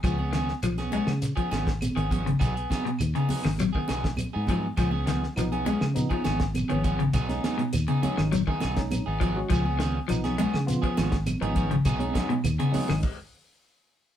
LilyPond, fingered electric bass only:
\new Staff \with { instrumentName = "Fingered electric bass" } { \clef bass \time 4/4 \key des \mixolydian \tempo 4 = 102 des,4 ces,8. des8 r16 aes,,8. aes,,8. | ces,8 r8 ees,16 r8 aes,,8 r16 ces,8. aes,8. | des,4 ces,8. des8 r16 aes,,8. aes,,8. | ces,8 r8 ees,16 r8 aes,,8 r16 ces,8. aes,,8. |
des,4 ces,8. des8 r16 aes,,8. aes,,8. | ces,8 r8 ees,16 r8 aes,,16 r2 | }